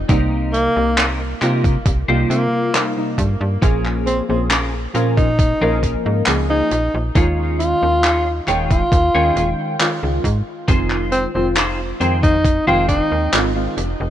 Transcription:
0.08 fm bass C2, synth keys C3 G3 A#3 D#4, clean electric guitar C4 D#4 G4 A#4, kick, closed hi-hat
0.53 alto saxophone A#3, closed hi-hat
0.76 fm bass C2, synth keys C3 G3 A#3 D#4
0.97 clean electric guitar C4 D#4 G4 A#4, clap, closed hi-hat
1.41 synth keys C3 G3 A#3 F4, fm bass C3, clean electric guitar C4 D#4 G4 A#4, clap, closed hi-hat
1.64 kick, closed hi-hat
1.86 fm bass C2, kick, closed hi-hat
2.08 fm bass C2, synth keys C3 G3 A#3 F4, clean electric guitar C4 D#4 G4 C5
2.30 fm bass C3, alto saxophone A#3, closed hi-hat
2.73 synth keys C3 G3 A#3 D#4, muted clean electric guitar stroke, clap, closed hi-hat
2.96 synth keys C3 G3 A#3 D#4, muted clean electric guitar stroke
3.18 fm bass G2, kick, closed hi-hat
3.41 fm bass G2
3.61 fm bass A#1, synth keys F3 A#3 C#4 G#4, clean electric guitar C#4 F4 G#4 A#4, kick, closed hi-hat
3.85 clap
4.06 alto saxophone C4, closed hi-hat
4.28 fm bass A#1, synth keys F3 A#3 C#4 G#4, alto saxophone C4
4.50 clean electric guitar C#4 F4 G#4 A#4, clap, closed hi-hat
4.93 fm bass A#2, synth keys F3 A#3 C#4 A#4, clean electric guitar C#4 F4 G#4 A#4, closed hi-hat
5.17 alto saxophone D#4, kick, closed hi-hat
5.39 kick, closed hi-hat
5.60 fm bass A#1, synth keys F3 A#3 C#4 A#4, clean electric guitar C#4 F4 G#4 A#4
5.83 kick, closed hi-hat
6.06 fm bass G#2
6.26 fm bass C#2, synth keys F3 A#3 C#4 G#4, muted clean electric guitar stroke, clap, closed hi-hat
6.49 synth keys F3 A#3 C#4 G#4, alto saxophone D#4, muted clean electric guitar stroke
6.71 fm bass A#1, closed hi-hat
6.94 fm bass A#1
7.15 fm bass D#2, synth keys D#3 G#3 C#4 F4, clean electric guitar D#4 F4 G#4 C#5, kick, closed hi-hat
7.59 alto saxophone F4, closed hi-hat
7.81 fm bass D#2, synth keys D#3 G#3 C#4 F4
8.03 clean electric guitar D#4 F4 G#4 C#5, clap, closed hi-hat
8.46 fm bass D#1, synth keys D#3 G#3 C#4 G5, clean electric guitar D#4 F4 G#4 C#5, clap, closed hi-hat
8.71 alto saxophone F4, kick, closed hi-hat
8.92 fm bass D#2, kick, closed hi-hat
9.14 fm bass D#2, synth keys D#3 G#3 C#4 G5, clean electric guitar D#4 F4 G#4 C#5
9.36 fm bass D#1, closed hi-hat
9.79 synth keys D#3 G#3 C#4 F4, muted clean electric guitar stroke, clap, closed hi-hat
10.02 fm bass C#2, synth keys D#3 G#3 C#4 F4, muted clean electric guitar stroke
10.24 fm bass G#2, kick, closed hi-hat
10.68 fm bass F1, synth keys D#3 G#3 C4 F4, clean electric guitar D#4 F4 G#4 C5, kick, closed hi-hat
10.90 clap
11.12 alto saxophone C4, closed hi-hat
11.35 fm bass F1, synth keys D#3 G#3 C4 F4, alto saxophone C4
11.55 clean electric guitar D#4 F4 G#4 C5, clap, closed hi-hat
12.00 fm bass F2, synth keys D#3 G#3 C4 G5, clean electric guitar D#4 F4 G#4 C5, closed hi-hat
12.23 alto saxophone D#4, kick, closed hi-hat
12.45 kick, closed hi-hat
12.66 fm bass F1, synth keys D#3 G#3 C4 G5, clean electric guitar D#4 F4 G#4 C5, alto saxophone F4
12.89 alto saxophone D#4, kick, closed hi-hat
13.12 fm bass D#2
13.32 fm bass G#1, synth keys D#3 G#3 C4 F4, muted clean electric guitar stroke, clap, closed hi-hat
13.55 synth keys D#3 G#3 C4 F4, muted clean electric guitar stroke
13.77 fm bass F1, closed hi-hat
14.00 fm bass F1

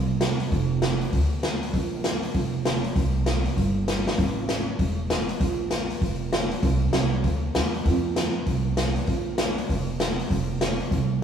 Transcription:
Already playing: upright bass C2
0.21 snare, closed hi-hat
0.40 open hi-hat
0.52 upright bass F1, kick, open hi-hat
0.82 snare, closed hi-hat
1.01 open hi-hat
1.13 upright bass D2, kick, open hi-hat
1.43 snare, closed hi-hat
1.63 open hi-hat
1.74 upright bass A#1, kick, open hi-hat
2.04 snare, closed hi-hat
2.23 open hi-hat
2.34 upright bass F1, kick, open hi-hat
2.65 snare, closed hi-hat
2.84 open hi-hat
2.96 upright bass C2, kick, open hi-hat
3.26 snare, closed hi-hat
3.45 open hi-hat
3.57 upright bass G1, kick, open hi-hat
3.88 snare, closed hi-hat
4.07 snare, open hi-hat
4.18 upright bass A1, kick, open hi-hat
4.49 snare, closed hi-hat
4.79 upright bass E1, kick, open hi-hat
5.10 snare, closed hi-hat
5.29 open hi-hat
5.40 upright bass A#1, kick, open hi-hat
5.71 snare, closed hi-hat
5.90 open hi-hat
6.01 upright bass F1, kick, open hi-hat
6.33 snare, closed hi-hat
6.51 open hi-hat
6.63 upright bass C2, kick, open hi-hat
6.93 upright bass C2, snare, closed hi-hat
7.24 upright bass D2, kick, open hi-hat
7.55 upright bass E2, snare, closed hi-hat
7.75 open hi-hat
7.86 upright bass F2, kick, open hi-hat
8.16 snare, closed hi-hat
8.46 upright bass C2, kick, open hi-hat
8.77 snare, closed hi-hat
8.96 open hi-hat
9.07 upright bass A#1, kick, open hi-hat
9.38 snare, closed hi-hat
9.58 open hi-hat
9.69 upright bass F1, kick, open hi-hat
10.00 snare, closed hi-hat
10.19 open hi-hat
10.30 upright bass F1, kick, open hi-hat
10.61 snare, closed hi-hat
10.80 open hi-hat
10.91 upright bass C2, kick, open hi-hat

